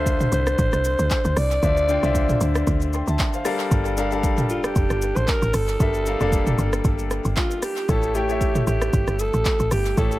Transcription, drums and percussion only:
0.06 kick medium
0.06 shaker medium
0.21 mid tom medium
0.21 shaker medium
0.32 shaker medium
0.47 cross-stick loud
0.47 shaker medium
0.58 kick loud
0.58 shaker medium
0.73 cross-stick medium
0.73 shaker medium
0.84 shaker medium
0.99 shaker medium
1.10 kick medium
1.10 clap loud
1.10 shaker medium
1.25 shaker medium
1.37 cross-stick medium
1.37 open hi-hat medium
1.37 shaker loud
1.51 shaker medium
1.63 kick loud
1.63 shaker medium
1.77 shaker medium
1.89 shaker loud
2.03 shaker medium
2.15 kick medium
2.15 shaker medium
2.29 mid tom medium
2.29 shaker medium
2.41 shaker medium
2.55 cross-stick loud
2.55 shaker medium
2.67 kick loud
2.67 shaker medium
2.82 shaker soft
2.93 shaker medium
3.08 shaker medium
3.19 kick medium
3.19 clap loud
3.19 shaker medium
3.34 shaker medium
3.45 cross-stick medium
3.45 open hi-hat medium
3.45 shaker loud
3.60 shaker medium
3.71 kick loud
3.71 shaker medium
3.85 shaker medium
3.97 shaker medium
4.12 shaker medium
4.23 kick medium
4.23 shaker medium
4.38 mid tom medium
4.38 shaker medium
4.49 shaker medium
4.64 cross-stick loud
4.64 shaker medium
4.76 kick loud
4.76 shaker medium
4.90 cross-stick medium
4.90 shaker soft
5.02 shaker medium
5.16 shaker medium
5.28 kick medium
5.28 clap loud
5.28 shaker medium
5.42 shaker medium
5.54 cross-stick medium
5.54 open hi-hat medium
5.54 shaker loud
5.68 shaker medium
5.80 kick loud
5.80 shaker medium
5.94 shaker medium
6.06 shaker medium
6.21 shaker medium
6.32 kick medium
6.32 shaker medium
6.47 mid tom medium
6.47 shaker medium
6.58 shaker medium
6.73 cross-stick loud
6.73 shaker medium
6.84 kick loud
6.84 shaker medium
6.99 shaker soft
7.11 cross-stick medium
7.11 shaker medium
7.25 shaker medium
7.37 kick medium
7.37 clap loud
7.37 shaker medium
7.51 shaker medium
7.62 cross-stick medium
7.62 open hi-hat medium
7.62 shaker loud
7.77 shaker medium
7.89 kick loud
7.89 shaker medium
8.03 shaker medium
8.15 shaker medium
8.29 shaker medium
8.41 kick medium
8.41 shaker medium
8.55 mid tom loud
8.55 shaker medium
8.67 shaker medium
8.82 cross-stick loud
8.82 shaker medium
8.93 kick loud
8.93 shaker medium
9.08 cross-stick medium
9.08 shaker soft
9.19 shaker medium
9.34 shaker medium
9.45 kick medium
9.45 clap loud
9.45 shaker medium
9.60 shaker medium
9.71 cross-stick medium
9.71 open hi-hat medium
9.71 shaker loud
9.86 shaker medium
9.97 kick loud
9.97 shaker medium
10.12 shaker medium

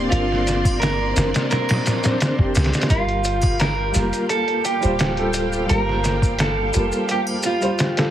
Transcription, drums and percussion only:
0.12 closed hi-hat medium
0.12 maracas soft
0.32 snare soft
0.47 snare medium
0.47 closed hi-hat medium
0.47 maracas medium
0.65 kick loud
0.65 triangle medium
0.65 maracas medium
0.82 snare loud
0.82 closed hi-hat medium
0.82 maracas soft
1.16 snare loud
1.16 closed hi-hat medium
1.16 maracas medium
1.34 snare loud
1.34 closed hi-hat medium
1.34 maracas soft
1.51 snare loud
1.51 closed hi-hat medium
1.51 maracas soft
1.69 snare loud
1.69 closed hi-hat medium
1.69 triangle medium
1.86 snare loud
1.86 closed hi-hat medium
1.86 maracas medium
2.04 snare loud
2.04 closed hi-hat medium
2.04 maracas medium
2.20 snare loud
2.20 closed hi-hat medium
2.20 maracas soft
2.39 kick loud
2.55 snare medium
2.55 closed hi-hat medium
2.55 triangle medium
2.55 maracas medium
2.64 snare medium
2.64 closed hi-hat medium
2.73 snare medium
2.73 closed hi-hat medium
2.73 maracas medium
2.81 snare medium
2.81 closed hi-hat medium
2.90 kick loud
2.90 closed hi-hat medium
2.90 maracas soft
3.09 closed hi-hat soft
3.24 closed hi-hat medium
3.24 maracas medium
3.42 kick loud
3.42 triangle medium
3.42 maracas medium
3.59 snare loud
3.59 closed hi-hat medium
3.59 maracas soft
3.94 snare soft
3.94 closed hi-hat medium
3.94 maracas loud
4.13 closed hi-hat soft
4.13 maracas soft
4.29 closed hi-hat medium
4.29 maracas soft
4.48 closed hi-hat soft
4.65 closed hi-hat medium
4.65 maracas medium
4.82 closed hi-hat soft
4.82 maracas soft
4.99 snare loud
4.99 closed hi-hat medium
4.99 maracas soft
5.17 closed hi-hat soft
5.33 closed hi-hat medium
5.33 maracas medium
5.53 maracas soft
5.69 closed hi-hat medium
5.69 maracas soft
5.89 snare soft
6.04 snare medium
6.04 closed hi-hat medium
6.04 maracas medium
6.22 kick loud
6.22 maracas medium
6.39 snare loud
6.39 closed hi-hat loud
6.39 maracas soft
6.74 closed hi-hat medium
6.74 maracas medium
6.92 maracas medium
7.09 closed hi-hat medium
7.09 maracas soft
7.27 triangle medium
7.43 closed hi-hat medium
7.43 maracas loud
7.62 closed hi-hat soft
7.62 maracas medium
7.79 snare loud
7.79 closed hi-hat medium
7.79 maracas soft
7.97 snare loud
7.97 closed hi-hat medium

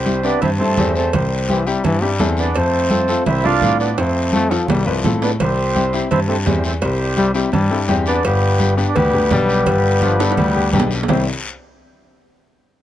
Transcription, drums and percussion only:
0.06 high conga medium
0.06 short guiro medium
0.23 short guiro medium
0.42 cowbell medium
0.42 high conga soft
0.42 low conga medium
0.42 long guiro medium
0.77 high conga medium
0.77 low conga medium
0.77 short guiro medium
0.96 short guiro medium
1.13 cowbell loud
1.13 high conga soft
1.13 low conga medium
1.13 long guiro medium
1.49 high conga medium
1.49 short guiro medium
1.67 short guiro medium
1.84 cowbell medium
1.84 high conga soft
1.84 low conga medium
1.84 long guiro medium
2.19 high conga medium
2.19 low timbale medium
2.19 short guiro medium
2.37 short guiro medium
2.55 cowbell medium
2.55 high conga soft
2.55 long guiro medium
2.90 high conga medium
2.90 short guiro medium
3.08 short guiro medium
3.26 cowbell medium
3.26 high conga soft
3.26 low conga medium
3.26 long guiro medium
3.62 high conga medium
3.62 low conga medium
3.62 short guiro medium
3.80 short guiro medium
3.98 cowbell medium
3.98 high conga soft
3.98 high timbale medium
3.98 long guiro medium
4.33 high conga medium
4.33 short guiro medium
4.51 high timbale medium
4.51 short guiro medium
4.68 cowbell medium
4.68 high conga soft
4.68 low conga medium
4.68 low timbale medium
4.68 long guiro medium
5.04 high conga medium
5.04 low conga medium
5.04 low timbale medium
5.04 short guiro medium
5.22 low timbale medium
5.22 short guiro medium
5.40 cowbell medium
5.40 high conga soft
5.40 low conga medium
5.40 long guiro medium
5.75 high conga medium
5.75 short guiro medium
5.93 short guiro medium
6.11 cowbell medium
6.11 high conga soft
6.11 low conga medium
6.11 long guiro medium
6.46 high conga medium
6.46 low conga medium
6.46 low timbale medium
6.46 short guiro medium
6.64 short guiro medium
6.82 cowbell medium
6.82 long guiro medium
7.17 high conga medium
7.17 short guiro medium
7.34 short guiro medium
7.52 cowbell medium
7.52 high conga soft
7.52 low conga medium
7.52 long guiro medium
7.88 high conga medium
7.88 short guiro medium
8.06 short guiro medium
8.23 cowbell loud
8.23 high conga soft
8.23 long guiro medium
8.60 high conga medium
8.60 short guiro medium
8.78 short guiro medium
8.96 cowbell medium
8.96 high conga soft
8.96 low conga medium
8.96 long guiro medium
9.31 high conga medium
9.31 low conga medium
9.31 low timbale medium
9.31 short guiro medium
9.49 short guiro medium
9.66 cowbell loud
9.66 high conga soft
9.66 low conga medium
9.66 long guiro medium
10.02 high conga medium
10.02 short guiro medium
10.20 high timbale medium
10.20 short guiro medium
10.32 high timbale medium
10.37 cowbell medium
10.37 high conga soft
10.37 low conga medium
10.37 long guiro medium
10.73 high conga medium
10.73 low conga medium
10.73 short guiro medium
10.80 low timbale medium
10.91 short guiro medium
11.03 low timbale medium
11.08 low conga loud
11.08 low timbale loud
11.08 long guiro medium

